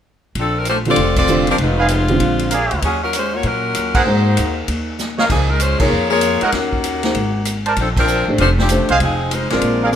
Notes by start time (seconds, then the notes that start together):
0.35 A#1, kick, ride
0.39 F3 C4 D4 A4
0.58 F3 C4 D4 A#4
0.65 C5, hi-hat pedal, ride
0.69 A3 D4 F4
0.85 D3 G3 C4 F4 D5, ride
0.89 C4 F4 A4
0.96 F1, kick, ride
1.16 C4 F4 A4 D5, kick, crash
1.27 D3 G3 C4 F4, hi-hat pedal
1.47 F3 C4 A#4, ride
1.51 D4
1.58 F1, kick, ride
1.62 G#3 B3 D#4 F4
1.78 G#4 B4 D#5 F5
1.88 hi-hat pedal, ride
2.08 D3 C4 F4 G4, ride
2.20 A#1, kick, ride
2.39 ride
2.51 G#4 A#4 D5 F5, hi-hat pedal, ride
2.71 D2, ride
2.82 D#2 F#3 C#4 F4 G#4, kick, ride
3.03 F#3 C#4 F4 A#4
3.13 G#3 C#4 F4 C5, hi-hat pedal, ride
3.35 A#3 F4 F#4 C#5
3.43 A#2 F#3 C#4 F4 A#4, kick, ride
3.75 D#2, hi-hat pedal, ride
3.95 A#3 D#4 F#4 G#4 A#4 C5 F#5, kick, crash
4.05 G#2 A#3 D#4 G#4 C5
4.37 D#2, hi-hat pedal, ride
4.68 D#2, kick, ride
4.99 snare, hi-hat pedal
5.18 A#4 C#5 D#5 F5, snare
5.30 C#2 F3 A#3 D#4 G#4, kick, crash
5.49 G#3 D#4 F4 A#4
5.60 G#3 C#4 F4 C5, hi-hat pedal, ride
5.78 C2 A#3 D#4 F4 G#4 C#5, kick, crash
5.92 F2
6.10 A#3 F4 G#4 C#5
6.21 hi-hat pedal, ride
6.41 G#3 D#4 F4 A#4 C#5 D#5 F#5, muted upright bass stroke, ride
6.52 D#2 D#3 A#3 C#4 F#4, kick, snare, ride
6.73 kick
6.84 hi-hat pedal, ride
7.03 A#3 D#4 G#4 C5, snare, ride
7.15 G#1, kick, ride
7.45 hi-hat pedal, ride
7.66 A#4 C5 D5 A5, ride
7.76 A#1 F3 C4 A4, kick, ride
7.81 D4
7.97 F3 C4 D4 A#4, kick, crash
8.08 hi-hat pedal
8.28 A1 A3 D4 G4 C5
8.38 F1 A3 D4 F4 C5, kick, ride
8.58 F3 C4 D4 G4, snare
8.69 A3 D4 G4 C5, hi-hat pedal, ride
8.80 A#1
8.89 C2 G#4 C5 D#5 F5, ride
9.00 F1 F3 C4 D#4 G#4, kick, ride
9.31 G#3 D#4 F4 C5, hi-hat pedal, ride
9.50 G#1 G#3 C4 D4 F4 A#4 D5, snare, ride
9.62 A#1, kick, ride
9.82 G#4 A#4 D5 F5
9.92 hi-hat pedal